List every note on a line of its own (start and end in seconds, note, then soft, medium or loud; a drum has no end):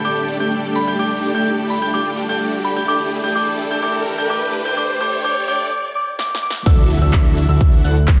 0.00 2.84 D3 medium
0.00 2.85 G3 medium
0.00 2.84 A3 medium
0.00 2.85 G4 medium
0.00 2.84 A4 medium
0.00 riser medium
0.05 0.37 A3 medium
0.05 0.37 D4 medium
0.05 0.37 G4 medium
0.05 0.37 D5 medium
0.05 0.37 G5 medium
0.05 0.18 D6 medium
0.05 0.37 G6 medium
0.05 closed hi-hat soft
0.17 closed hi-hat soft
0.29 open hi-hat loud
0.40 0.85 A3 medium
0.40 0.85 D4 medium
0.40 0.85 G4 medium
0.40 0.85 D5 medium
0.40 0.85 G5 medium
0.40 0.85 G6 medium
0.40 closed hi-hat soft
0.52 closed hi-hat soft
0.64 closed hi-hat soft
0.76 0.89 B5 medium
0.76 open hi-hat loud
0.87 0.97 A3 medium
0.87 0.97 D4 medium
0.87 0.97 G4 medium
0.87 0.97 D5 medium
0.87 0.97 G5 medium
0.87 0.97 G6 medium
0.87 closed hi-hat medium
0.99 1.32 A3 medium
0.99 1.32 D4 medium
0.99 1.32 G4 medium
0.99 1.32 D5 medium
0.99 1.32 G5 loud
0.99 1.12 D6 medium
0.99 1.32 G6 loud
0.99 closed hi-hat medium
1.11 open hi-hat medium
1.23 open hi-hat loud
1.35 1.79 A3 medium
1.35 1.79 D4 medium
1.35 1.79 G4 medium
1.35 1.79 D5 medium
1.35 1.79 G5 medium
1.35 1.79 G6 medium
1.35 closed hi-hat medium
1.47 closed hi-hat medium
1.58 closed hi-hat soft
1.70 1.83 B5 medium
1.70 open hi-hat loud
1.82 1.92 A3 medium
1.82 1.92 D4 medium
1.82 1.92 G4 medium
1.82 1.92 D5 medium
1.82 1.92 G5 medium
1.82 1.92 G6 medium
1.82 closed hi-hat soft
1.94 2.26 A3 medium
1.94 2.26 D4 medium
1.94 2.26 G4 medium
1.94 2.26 D5 medium
1.94 2.26 G5 loud
1.94 2.07 D6 medium
1.94 2.26 G6 loud
1.94 closed hi-hat medium
2.06 closed hi-hat soft
2.17 open hi-hat loud
2.29 2.74 A3 medium
2.29 2.74 D4 medium
2.29 2.74 G4 medium
2.29 2.74 D5 medium
2.29 2.74 G5 loud
2.29 2.74 G6 loud
2.29 open hi-hat medium
2.41 closed hi-hat medium
2.53 closed hi-hat soft
2.64 2.78 B5 medium
2.64 open hi-hat loud
2.76 2.86 A3 medium
2.76 2.86 D4 medium
2.76 2.86 G4 medium
2.76 2.86 D5 medium
2.76 2.86 G5 medium
2.76 2.86 G6 medium
2.76 closed hi-hat medium
2.88 5.69 D3 medium
2.88 5.69 E3 medium
2.88 3.21 A3 medium
2.88 5.69 A3 medium
2.88 3.21 D4 medium
2.88 5.69 E4 medium
2.88 3.21 G4 medium
2.88 5.69 A4 medium
2.88 3.21 D5 medium
2.88 3.21 G5 loud
2.88 3.01 D6 medium
2.88 3.21 G6 loud
2.88 closed hi-hat medium
3.00 closed hi-hat soft
3.12 open hi-hat loud
3.24 3.34 A3 medium
3.24 3.34 D4 medium
3.24 3.34 G4 medium
3.24 3.34 D5 medium
3.24 3.34 G5 medium
3.24 3.34 G6 loud
3.24 closed hi-hat medium
3.35 3.68 A3 medium
3.35 3.68 D4 medium
3.35 3.68 G4 medium
3.35 3.68 D5 medium
3.35 3.68 G5 loud
3.35 3.48 D6 medium
3.35 3.68 G6 loud
3.35 closed hi-hat medium
3.47 closed hi-hat soft
3.59 open hi-hat loud
3.71 3.81 A3 medium
3.71 3.81 D4 medium
3.71 3.81 G4 medium
3.71 3.81 D5 medium
3.71 3.81 G5 loud
3.71 3.81 G6 loud
3.71 closed hi-hat medium
3.83 4.15 A3 medium
3.83 4.15 D4 medium
3.83 4.15 G4 medium
3.83 4.15 D5 medium
3.83 4.15 G5 loud
3.83 3.96 D6 medium
3.83 4.15 G6 loud
3.83 closed hi-hat medium
3.94 closed hi-hat soft
4.06 open hi-hat loud
4.18 4.28 A3 medium
4.18 4.28 D4 medium
4.18 4.28 G4 medium
4.18 4.28 D5 medium
4.18 4.28 G5 loud
4.18 4.28 G6 loud
4.18 closed hi-hat medium
4.30 4.62 A3 loud
4.30 4.62 D4 medium
4.30 4.63 G4 medium
4.30 4.62 D5 medium
4.30 4.62 G5 loud
4.30 4.43 D6 medium
4.30 4.63 G6 loud
4.30 closed hi-hat medium
4.42 closed hi-hat soft
4.53 open hi-hat loud
4.65 4.75 A3 medium
4.65 4.75 D4 medium
4.65 4.75 G4 medium
4.65 4.75 D5 medium
4.65 4.75 G5 loud
4.65 4.75 G6 loud
4.65 closed hi-hat medium
4.77 4.99 A3 loud
4.77 4.99 D4 medium
4.77 4.99 G4 medium
4.77 4.99 D5 medium
4.77 4.99 G5 loud
4.77 4.90 D6 medium
4.77 4.99 G6 loud
4.77 closed hi-hat medium
4.89 open hi-hat medium
5.01 5.22 A3 loud
5.01 5.22 D4 medium
5.01 5.22 G4 medium
5.01 5.22 D5 medium
5.01 5.22 G5 loud
5.01 5.14 D6 medium
5.01 5.23 G6 loud
5.01 open hi-hat loud
5.12 closed hi-hat medium
5.24 5.46 A3 medium
5.24 5.46 D4 medium
5.24 5.46 G4 medium
5.24 5.46 D5 medium
5.24 5.46 G5 loud
5.24 5.37 D6 loud
5.24 5.46 G6 loud
5.24 closed hi-hat medium
5.36 closed hi-hat soft
5.48 5.70 A3 loud
5.48 5.70 D4 medium
5.48 5.70 G4 medium
5.48 5.70 D5 medium
5.48 5.70 G5 loud
5.48 5.61 D6 medium
5.48 5.70 G6 loud
5.48 open hi-hat loud
5.60 closed hi-hat medium
5.72 5.85 D6 medium
5.95 6.08 D6 medium
6.19 6.32 D6 medium
6.19 snare medium
6.35 snare medium
6.43 6.56 D6 loud
6.50 snare medium
6.66 6.99 D2 loud
6.66 6.99 D4 loud
6.66 6.99 E4 medium
6.66 6.99 F#4 medium
6.66 6.99 A4 medium
6.66 6.99 E5 loud
6.66 6.99 E6 loud
6.66 kick loud
6.66 closed hi-hat medium
6.66 crash loud
6.66 impact medium
6.66 shaker soft
6.78 closed hi-hat soft
6.90 open hi-hat loud
6.90 shaker medium
7.02 7.47 D2 loud
7.02 7.46 D4 medium
7.02 7.46 E4 medium
7.02 7.46 F#4 medium
7.02 7.46 A4 medium
7.02 7.46 E5 loud
7.02 7.46 E6 loud
7.02 closed hi-hat medium
7.02 shaker soft
7.13 kick loud
7.13 clap loud
7.13 closed hi-hat medium
7.13 shaker soft
7.25 closed hi-hat soft
7.25 shaker soft
7.37 open hi-hat loud
7.37 shaker medium
7.49 7.82 D2 loud
7.49 7.81 D4 medium
7.49 7.82 E4 medium
7.49 7.82 F#4 medium
7.49 7.82 A4 medium
7.49 7.81 E5 medium
7.49 7.82 E6 loud
7.49 closed hi-hat medium
7.49 shaker soft
7.61 kick loud
7.61 closed hi-hat medium
7.61 shaker soft
7.73 closed hi-hat soft
7.73 shaker soft
7.84 8.17 D2 medium
7.84 7.96 D4 medium
7.84 7.96 E4 medium
7.84 7.96 F#4 medium
7.84 7.96 A4 medium
7.84 7.96 F#5 medium
7.84 7.96 F#6 medium
7.84 open hi-hat loud
7.84 shaker medium
7.96 closed hi-hat medium
7.96 shaker soft
8.08 kick loud
8.08 clap loud
8.08 closed hi-hat medium
8.08 shaker soft